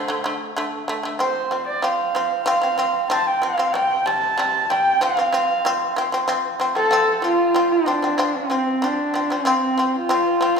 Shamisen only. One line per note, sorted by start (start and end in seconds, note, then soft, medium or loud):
0.08 0.22 D3 medium
0.08 0.22 A3 medium
0.24 0.50 D3 medium
0.24 0.51 A3 medium
0.57 0.82 D3 medium
0.57 0.83 A3 loud
0.88 1.01 D3 medium
0.88 1.02 A3 medium
1.03 1.17 D3 medium
1.03 1.18 A3 medium
1.19 1.45 F3 medium
1.19 1.46 C4 medium
1.51 1.77 F3 medium
1.51 1.78 C4 medium
1.82 2.09 F3 medium
1.82 2.09 C4 medium
2.15 2.41 F3 medium
2.15 2.41 C4 medium
2.46 2.59 F3 medium
2.46 2.60 C4 loud
2.62 2.75 F3 medium
2.62 2.76 C4 medium
2.78 3.04 F3 medium
2.78 3.04 C4 medium
3.10 3.36 F3 medium
3.10 3.37 C4 medium
3.42 3.55 F3 medium
3.42 3.56 C4 medium
3.58 3.71 F3 medium
3.58 3.72 C4 medium
3.74 4.00 C3 medium
3.74 4.00 G3 medium
4.06 4.32 C3 medium
4.06 4.32 G3 medium
4.38 4.63 C3 medium
4.38 4.64 G3 medium
4.70 4.95 C3 medium
4.70 4.96 G3 medium
5.01 5.14 F3 medium
5.01 5.15 C4 loud
5.17 5.30 F3 medium
5.17 5.31 C4 medium
5.33 5.58 F3 medium
5.33 5.59 C4 medium
5.65 5.90 F3 medium
5.65 5.91 C4 medium
5.96 6.09 F3 medium
5.96 6.10 C4 medium
6.12 6.25 F3 medium
6.12 6.26 C4 medium
6.28 6.54 F3 medium
6.28 6.54 C4 medium
6.60 6.73 F3 medium
6.60 6.73 C4 medium
6.75 6.88 F3 medium
6.75 6.89 C4 medium
6.91 7.17 F3 medium
6.91 7.18 C4 medium
7.22 7.48 F3 medium
7.22 7.49 C4 medium
7.54 7.80 F3 medium
7.54 7.81 C4 loud
7.86 7.99 F3 medium
7.86 8.00 C4 medium
8.02 8.15 F3 medium
8.02 8.16 C4 medium
8.18 8.44 F3 medium
8.18 8.45 C4 loud
8.50 8.76 F3 medium
8.50 8.76 C4 medium
8.82 9.08 F3 medium
8.82 9.09 C4 medium
9.14 9.27 F3 medium
9.14 9.28 C4 medium
9.30 9.43 F3 soft
9.30 9.44 C4 medium
9.45 9.71 F3 medium
9.45 9.72 C4 medium
9.78 10.03 F3 medium
9.78 10.04 C4 medium
10.09 10.35 F3 medium
10.09 10.35 C4 loud
10.41 10.54 F3 medium
10.41 10.54 C4 medium
10.56 10.60 F3 medium